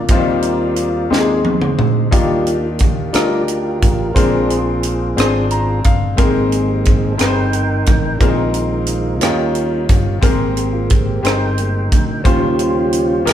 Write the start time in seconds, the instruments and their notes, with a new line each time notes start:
Already playing: upright piano A#2 A#3 C4 D4 F4 G#4, tonewheel organ F4 A#4 D5
0.08 fingered electric bass D#2, upright piano D#3 F3 C4 D#4 F4, tonewheel organ F3 G3 C4, kick, closed hi-hat
0.16 upright piano G3
0.42 closed hi-hat
0.76 closed hi-hat
1.10 fingered electric bass D#2, upright piano C3 G#3 C4 D#4 G4, tonewheel organ G#3 C4 D#4, snare
1.18 upright piano G#4
1.45 high tom
1.62 mid tom
1.79 fingered electric bass D2, mid tom
2.11 fingered electric bass D#2, upright piano D#3 D4 D#4 F4 G4, tonewheel organ F3 G3 A#3 F4 G4 D5, kick, closed hi-hat
2.47 closed hi-hat
2.62 tonewheel organ F4
2.79 tonewheel organ G4, kick, closed hi-hat
3.12 fingered electric bass D2, tonewheel organ F3 G3 F4 G4 A#4 D5, upright piano D4 D#4 F4 A#4, cross-stick, closed hi-hat
3.48 closed hi-hat
3.82 fingered electric bass A1, kick, closed hi-hat
4.13 fingered electric bass A#1, upright piano A#2 C4 D4 G#4, tonewheel organ G#3 C4 D4 F4 G#4 C5, kick, closed hi-hat
4.18 upright piano A#4
4.50 closed hi-hat
4.83 closed hi-hat
5.15 fingered electric bass G#1, tonewheel organ G#3 C4 D4, upright piano C4 D4 G#4 C5, closed hi-hat
5.20 cross-stick
5.51 upright piano A#5, closed hi-hat
5.84 fingered electric bass G1, upright piano F5, kick, closed hi-hat
6.16 fingered electric bass G#1, upright piano G#2 C4 G4 G#4 A#4, tonewheel organ G#3 A#3 C4 D#4 G#4, kick, closed hi-hat
6.52 closed hi-hat
6.68 tonewheel organ G4
6.84 tonewheel organ G#4, kick, closed hi-hat
7.11 tonewheel organ A4
7.17 fingered electric bass G1, upright piano C4 G4 G#4 B4, tonewheel organ D#4 A#4 G5, cross-stick, closed hi-hat
7.26 upright piano C5
7.53 closed hi-hat
7.86 fingered electric bass A1, kick, closed hi-hat
8.18 fingered electric bass A#1, upright piano A#2 C4 D4 G#4, tonewheel organ D#3 G#3 C4 D#4 F4 A#4, kick, closed hi-hat
8.22 upright piano A#4
8.28 upright piano D#4
8.54 closed hi-hat
8.86 closed hi-hat
9.19 fingered electric bass D#2, upright piano D#3 C#4 D#4 F4 G4, tonewheel organ F3 G3 C#4, cross-stick, closed hi-hat
9.55 closed hi-hat
9.89 fingered electric bass G1, kick, closed hi-hat
10.21 fingered electric bass G#1, upright piano G#2 C4 G4 G#4 A#4, tonewheel organ G#3 A#3 C4, kick, closed hi-hat
10.26 tonewheel organ G4
10.57 closed hi-hat
10.73 tonewheel organ F4
10.90 tonewheel organ G4, kick, closed hi-hat
11.23 fingered electric bass G1, upright piano C4 G4 G#4 C5, tonewheel organ D#4 A#4 G5, cross-stick, closed hi-hat
11.58 tonewheel organ G#3 A#3 C4, closed hi-hat
11.92 fingered electric bass D2, kick, closed hi-hat
12.24 fingered electric bass D#2, tonewheel organ C#3 F3 G3 C#4 F4 G4 C5, upright piano D#3 C#4 F4 G4 C5, kick, closed hi-hat
12.59 closed hi-hat
12.93 closed hi-hat
13.25 fingered electric bass D#2, upright piano D#3 C#4 D#4 G4 A#4, tonewheel organ F3 G3 C#4, cross-stick, closed hi-hat